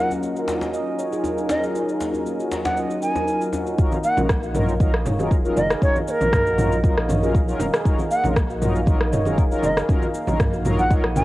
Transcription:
Already playing: F#3 C#4 D#4 F4 A#4 D#5 F#5 G#5
0.11 djembe tone, cabasa
0.22 A#3, cabasa
0.36 F#4, cabasa
0.48 djembe slap, cabasa
0.61 djembe slap, djembe tone, cabasa
0.74 D#5, cabasa
0.99 C#5, cabasa
1.12 G#4, cabasa
1.24 D#4, djembe tone, cabasa
1.38 cabasa
1.49 A#4 D#5, djembe slap, djembe tone, cabasa
1.63 G#4, cabasa
1.75 D#4, cabasa
1.89 cabasa
2.00 A#3, djembe slap, cabasa
2.14 djembe tone, cabasa
2.26 A#3, cabasa
2.40 F#4, cabasa
2.52 djembe slap, cabasa
2.65 F#5, djembe slap, djembe tone, cabasa
2.77 D#5, cabasa
2.91 cabasa
3.02 D#4 G#5, cabasa
3.16 A#4, djembe tone, cabasa
3.28 A#4, cabasa
3.41 F#4, cabasa
3.53 F#4, djembe tone, cabasa
3.67 D#4, cabasa
3.78 D#1 F#3 C#4 D#4 F4 A#4 D#5 F5, kick, cabasa
3.92 high conga, cabasa
4.04 A#3 F#5, cabasa
4.17 A#1 F#3 C#4 D#4 F4 A#4, high conga, low conga, cabasa
4.29 A#3, kick, cross-stick, cabasa
4.43 F#4, cabasa
4.55 F#3 C#4 D#4 F4 A#4, mid tom, low conga, cabasa
4.68 cabasa
4.80 F#3 C#4 D#4 F4 A#4 D#5, kick, high conga, cabasa
4.94 cross-stick
5.06 D#1 C#5, mid tom, low conga, cabasa
5.19 F#3 C#4 D#4 F4 G#4 A#4, high conga, cabasa
5.31 D#4, kick, cabasa
5.44 F#3 C#4 D#4 F4 A#4, cabasa
5.57 F#1 A#4 D#5, high conga, low conga, cabasa
5.70 G#4, cross-stick, cabasa
5.82 D#1 F#3 C#4 D#4 F4 A#4 C#5, kick, cabasa
5.96 high conga, cabasa
6.08 A#3 A#4 C#5, cabasa
6.21 A#1 F#3 C#4 D#4 F4 A#4, high conga, low conga, cabasa
6.33 A#3, kick, cross-stick, mid tom, cabasa
6.47 F#4, cabasa
6.58 F#3 C#4 D#4 F4 A#4, mid tom, high conga, low conga, cabasa
6.72 cabasa
6.84 F#3 C#4 D#4 F4 A#4 D#5, kick, cabasa
6.97 A#1, cross-stick
7.09 C#5, mid tom, high conga, cabasa
7.22 F#3 C#4 D#4 F4 G#4 A#4, cabasa
7.35 D#4, kick, cabasa
7.48 F#3 C#4 D#4 F4 A#4, cabasa
7.59 D#1 A#4, high conga, low conga, cabasa
7.74 G#4, cross-stick, cabasa
7.85 D#1 F#3 C#4 D#4 F4 A#4, kick, cabasa
7.98 high conga, cabasa
8.11 A#3 F#5, cabasa
8.24 A#1 F#3 C#4 D#4 F4 A#4, high conga, low conga, cabasa
8.36 A#3, kick, cross-stick, cabasa
8.50 F#4, cabasa
8.61 F#3 C#4 D#4 F4 A#4, mid tom, low conga, cabasa
8.76 cabasa
8.86 F#3 C#4 D#4 F4 A#4 D#5, kick, high conga, cabasa
9.01 cross-stick
9.12 D#1 C#5, mid tom, low conga, cabasa
9.25 F#3 C#4 D#4 F4 G#4 A#4, high conga, cabasa
9.38 D#4, kick, cabasa
9.51 F#3 C#4 D#4 F4 A#4, cabasa
9.62 F#1 A#4 D#5, high conga, low conga, cabasa
9.77 G#4, cross-stick, cabasa
9.89 D#1 F#3 C#4 D#4 F4 A#4, kick, cabasa
10.02 high conga, cabasa
10.14 A#3, cabasa
10.27 A#1 F#3 C#4 D#4 F4 A#4, high conga, low conga, cabasa
10.40 A#3, kick, cross-stick, mid tom, cabasa
10.53 F#4, cabasa
10.65 F#3 C#4 D#4 F4 A#4, mid tom, high conga, low conga, cabasa
10.79 F#5, cabasa
10.90 F#3 C#4 D#4 F4 A#4 D#5, kick, cabasa
11.04 A#1, cross-stick
11.16 F#3 C#4 D#4 F4 A#4 G#5, mid tom, high conga, cabasa

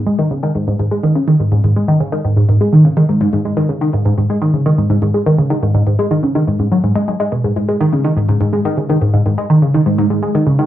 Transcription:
0.06 G#3
0.19 D#3
0.31 C#3
0.43 D#3
0.55 G#2
0.68 G#2
0.80 G#2
0.91 G#3
1.03 D#3
1.15 C#3
1.28 D#3
1.40 G#2
1.52 G#2
1.64 G#2
1.76 G#3
1.88 D#3
2.00 C#3
2.12 D#3
2.25 G#2
2.36 G#2
2.49 G#2
2.61 G#3
2.73 D#3
2.85 C#3
2.97 D#3
3.09 G#2
3.21 G#2
3.33 G#2
3.45 G#3
3.57 D#3
3.69 C#3
3.81 D#3
3.93 G#2
4.05 G#2
4.18 G#2
4.30 G#3
4.42 D#3
4.54 C#3
4.66 D#3
4.78 G#2
4.90 G#2
5.02 G#2
5.14 G#3
5.26 D#3
5.38 C#3
5.50 D#3
5.63 G#2
5.74 G#2
5.87 G#2
5.99 G#3
6.11 D#3
6.23 C#3
6.35 D#3
6.47 G#2
6.59 G#2
6.72 F#3
6.84 G#2
6.96 G#3
7.08 G#3
7.20 G#3
7.32 B2
7.44 G#2
7.56 G#2
7.69 G#3
7.80 D#3
7.93 C#3
8.04 D#3
8.17 G#2
8.29 G#2
8.41 G#2
8.53 G#3
8.65 D#3
8.77 C#3
8.90 D#3
9.01 G#2
9.14 G#2
9.26 G#2
9.38 G#3
9.50 D#3
9.62 C#3
9.74 D#3
9.86 G#2
9.99 G#2
10.10 G#2
10.23 G#3
10.35 D#3
10.47 C#3
10.59 D#3

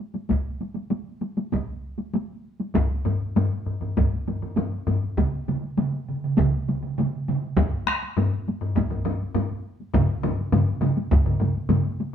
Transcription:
0.14 taiko high
0.29 taiko, taiko high
0.61 taiko high
0.75 taiko high
0.90 taiko high
1.21 taiko high
1.37 taiko high
1.52 taiko, taiko high
1.98 taiko high
2.14 taiko high
2.60 taiko high
2.75 taiko, taiko low-mid, taiko high
2.90 taiko high
3.05 taiko low-mid, taiko high
3.36 taiko low-mid, taiko high
3.51 taiko high
3.66 taiko low-mid
3.81 taiko low-mid
3.97 taiko, taiko low-mid, taiko high
4.13 taiko high
4.28 taiko low-mid, taiko high
4.42 taiko low-mid, taiko high
4.57 taiko low-mid, taiko high
4.73 taiko high
4.87 taiko low-mid, taiko high
5.03 taiko high
5.18 taiko, taiko mid, taiko high
5.33 taiko high
5.48 taiko mid, taiko high
5.63 taiko high
5.77 taiko mid, taiko high
5.93 taiko high
6.08 taiko mid
6.24 taiko mid
6.37 taiko, taiko mid, taiko high
6.53 taiko high
6.69 taiko mid, taiko high
6.83 taiko mid, taiko high
6.98 taiko mid, taiko high
7.13 taiko high
7.28 taiko mid, taiko high
7.42 taiko high
7.57 taiko, taiko low-mid, taiko high
7.87 taiko rim, taiko high
8.02 taiko high
8.17 taiko low-mid, taiko high
8.32 taiko high
8.48 taiko high
8.61 taiko low-mid
8.75 taiko, taiko low-mid, taiko high
8.90 taiko low-mid, taiko high
9.05 taiko low-mid, taiko high
9.22 taiko high
9.35 taiko low-mid, taiko high
9.51 taiko high
9.80 taiko high
9.94 taiko, taiko low-mid, taiko mid, taiko high
10.10 taiko high
10.23 taiko low-mid, taiko mid, taiko high
10.39 taiko high
10.52 taiko low-mid, taiko mid, taiko high
10.68 taiko high
10.82 taiko low-mid, taiko mid, taiko high
10.97 taiko high
11.11 taiko, taiko low-mid, taiko mid, taiko high
11.26 taiko low-mid, taiko mid, taiko high
11.40 taiko low-mid, taiko mid, taiko high
11.56 taiko high
11.69 taiko low-mid, taiko mid, taiko high
11.86 taiko high
12.00 taiko high

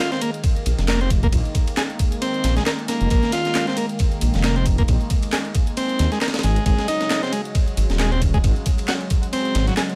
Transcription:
Already playing: D#3 G#3 A#3 F4
0.12 C4, snare, closed hi-hat
0.21 A#3, closed hi-hat, ride
0.34 closed hi-hat
0.44 kick, closed hi-hat, ride
0.56 closed hi-hat
0.66 A#1, closed hi-hat, ride
0.79 F1, snare, closed hi-hat
0.88 A#3, snare, clap, closed hi-hat, ride
1.01 C4, closed hi-hat
1.10 kick, closed hi-hat, ride
1.23 A#3, kick, closed hi-hat
1.32 A#1, kick, closed hi-hat, ride
1.45 closed hi-hat
1.55 kick, closed hi-hat, ride
1.67 closed hi-hat, ride
1.77 G#4, snare, clap, closed hi-hat, ride
1.90 closed hi-hat
1.99 kick, closed hi-hat, ride
2.12 closed hi-hat
2.22 C4, closed hi-hat, ride
2.34 closed hi-hat
2.44 A#1, snare, closed hi-hat, ride
2.57 G#3, snare, closed hi-hat
2.66 A#4, snare, clap, closed hi-hat, ride
2.79 closed hi-hat
2.88 A#3, snare, closed hi-hat, ride
3.01 F1, closed hi-hat
3.10 A#1 A#3, kick, closed hi-hat, ride
3.23 snare, closed hi-hat
3.32 F4, snare, closed hi-hat, ride
3.45 snare, closed hi-hat
3.55 snare, clap, closed hi-hat, ride
3.67 C4, snare, closed hi-hat
3.77 A#3, closed hi-hat, ride
3.89 closed hi-hat
3.99 kick, closed hi-hat, ride
4.12 closed hi-hat
4.21 A#1, closed hi-hat, ride
4.34 F1, snare, closed hi-hat
4.43 A#3, snare, clap, closed hi-hat, ride
4.56 C4, closed hi-hat
4.66 kick, closed hi-hat, ride
4.78 A#3, kick, closed hi-hat
4.88 A#1, kick, closed hi-hat, ride
5.01 closed hi-hat
5.10 kick, closed hi-hat, ride
5.23 closed hi-hat, ride
5.32 G#4, snare, clap, closed hi-hat, ride
5.45 closed hi-hat
5.55 kick, closed hi-hat, ride
5.67 closed hi-hat
5.77 C4, closed hi-hat, ride
5.89 closed hi-hat
5.99 D#2, snare, closed hi-hat, ride
6.12 G#3, snare, closed hi-hat
6.21 A#4, snare, clap, closed hi-hat, ride
6.28 snare, ride
6.34 snare, closed hi-hat, ride
6.39 snare, ride
6.43 G#1 C#3 F#3 G#3, snare, closed hi-hat, ride
6.56 closed hi-hat
6.66 G#1 G#3, kick, closed hi-hat, ride
6.79 snare, closed hi-hat
6.88 D#4, snare, closed hi-hat, ride
7.01 snare, closed hi-hat
7.10 snare, clap, closed hi-hat, ride
7.23 C4, snare, closed hi-hat
7.32 G#3, closed hi-hat, ride
7.45 closed hi-hat
7.55 kick, closed hi-hat, ride
7.68 closed hi-hat
7.77 G#1, closed hi-hat, ride
7.90 D#1, snare, closed hi-hat
7.99 G#3, snare, clap, closed hi-hat, ride
8.12 C4, closed hi-hat
8.22 kick, closed hi-hat, ride
8.34 G#3, kick, closed hi-hat
8.44 G#1, kick, closed hi-hat, ride
8.56 closed hi-hat
8.66 kick, closed hi-hat, ride
8.78 closed hi-hat, ride
8.88 F#4, snare, clap, closed hi-hat, ride
9.01 closed hi-hat
9.10 kick, closed hi-hat, ride
9.23 closed hi-hat
9.33 C4, closed hi-hat, ride
9.45 closed hi-hat
9.55 G#1, snare, closed hi-hat, ride
9.67 F#3, snare, closed hi-hat
9.77 G#4, snare, clap, closed hi-hat, ride
9.90 closed hi-hat

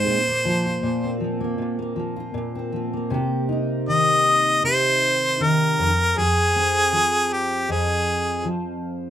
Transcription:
Already playing: G#3 C4 D#4 G#4 C5
0.07 A#2
0.28 A#3
0.45 F3
0.66 F4
0.83 A#2
1.04 C4
1.20 F3
1.41 A#3
1.58 A#2
1.79 A#3
1.96 F3
2.16 F4
2.34 A#2
2.55 C4
2.72 F3
2.93 A#3
3.10 C3 G4
3.49 D#4
3.88 D#3 D#5
4.63 C3 C5
5.40 D#3 A#4
5.78 F2
6.17 F2 G#4
6.56 C4
6.93 F3
7.33 G4
7.69 F2 G#4
8.45 F3

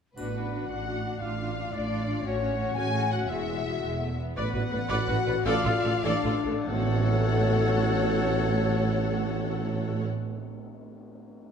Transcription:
0.16 A1 A2 B3 D4 F#4 B4 D5 F#5, triangle
0.35 D4 F#4
0.53 D4 F#4
0.69 A1 A2 D4 F#4 F#5
0.88 D4 F#4
1.05 D4 F#4
1.21 A1 A2 D4 F4 F5
1.40 D4 F4
1.56 D4 F4
1.72 A1 A2 D4 F4 D5
1.90 D4 F4
2.07 D4 F4
2.24 A1 A2 C#4 F#4 C#5 F#5
2.41 C#4 F#4
2.58 C#4 F#4
2.76 A1 A2 C#4 F#4 G#4 G#5
2.94 C#4 F#4
3.11 C#4 F#4 F#5
3.29 E1 E2 G#3 E4 F#4 G#4 E5
3.48 G#3 F#4
3.66 G#3 F#4
3.82 E1 E2 G#3
4.01 A3
4.18 B3
4.36 A1 A2 B3 B4 D5 F#5
4.53 A1 A2 F#4 B4 D5
4.71 A1 A2 B4 D5
4.89 A1 A2 F#4 B4 D5 F#5
5.08 A1 A2 F#4 B4 D5
5.26 A1 A2 B4 D5
5.45 A1 A2 F4 A4 D5 F5
5.64 A1 A2 F4 A4 D5
5.83 A1 A2 A4 D5
6.04 A1 A2 D4 A4 D5 F5
6.24 A1 A2 F4 A4 D5
6.45 A1 A2 A4 D5
6.67 A1 A2 A3 F#4 A4 C#5 F#5, tam-tam

